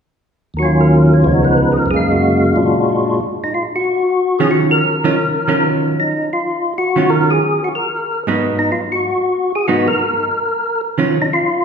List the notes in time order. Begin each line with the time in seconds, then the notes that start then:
0.54 D#2 D#3
0.59 F#3 C#4 F#4
0.65 F4
0.81 A#4
1.13 C#5
1.22 C#2 C#3 F3 B3
1.27 D#4
1.45 B4
1.72 G#4
1.79 A#4
1.86 F#2 C#3
1.91 G#3 A#3 G#4
1.96 F5
2.12 F#4
2.56 A#2 G#3 D4 F4 F#4
3.44 D#4
3.54 F4
3.76 F#4
4.39 D#3 F#3 C#4 F4 G#4
4.51 F#4
4.71 A#4
5.04 D#3 F#3 C#4 F4
5.48 D#3 F#3 C#4 F4
6.00 D#4
6.33 F4
6.78 F#4
6.96 D#3 F#3 C#4 F4
7.10 A#4
7.31 G#4
7.64 F#4
7.75 A#4
8.27 G#2 F#3 B3 D#4
8.59 D#4
8.72 F4
8.92 F#4
9.55 G#4
9.68 G#2 F#3 B3 D#4 F#4
9.88 A#4
10.98 D#3 F#3 C#4 F4
11.22 D#4
11.33 F4